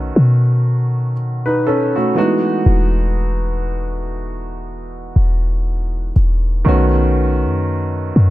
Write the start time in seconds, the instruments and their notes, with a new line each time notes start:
Already playing: 808-style bass B1, grand piano D#3 A3 B3 C#4 F#4
0.16 808-style bass B2
1.46 grand piano D#4 B4
1.67 grand piano C#4 A4
1.96 grand piano A3 F#4
2.15 grand piano E3 G#3 B3 D#4 F#4
2.66 808-style bass E1
5.16 808-style bass E1
6.16 808-style bass E1
6.65 808-style bass B1, grand piano D#3 A3 B3 C#4 F#4
7.45 808-style bass F#2
8.16 808-style bass F#2